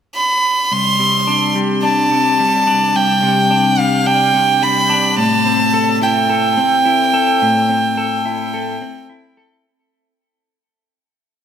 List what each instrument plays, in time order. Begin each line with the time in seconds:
0.16 violin B5
0.71 clean electric guitar C2, violin C6
1.00 clean electric guitar C3
1.27 clean electric guitar D4
1.55 clean electric guitar G3
1.83 clean electric guitar D4, violin A5
2.11 clean electric guitar C3
2.39 clean electric guitar G3
2.67 clean electric guitar D4
2.95 clean electric guitar C2, violin G5
3.23 clean electric guitar C3
3.51 clean electric guitar D4
3.79 clean electric guitar G3, violin F5
4.06 clean electric guitar D4, violin G5
4.34 clean electric guitar C3
4.62 clean electric guitar G3, violin B5
4.89 clean electric guitar D4
5.17 clean electric guitar A2, violin A5
5.46 clean electric guitar C4
5.73 clean electric guitar A4
6.02 clean electric guitar E4, violin G5
6.30 clean electric guitar A4
6.57 clean electric guitar C4
6.85 clean electric guitar E4
7.14 clean electric guitar A4
7.42 clean electric guitar A2
7.69 clean electric guitar C4
7.97 clean electric guitar A4
8.25 clean electric guitar E4
8.54 clean electric guitar A4
8.81 clean electric guitar C4
9.10 clean electric guitar E4
9.37 clean electric guitar A4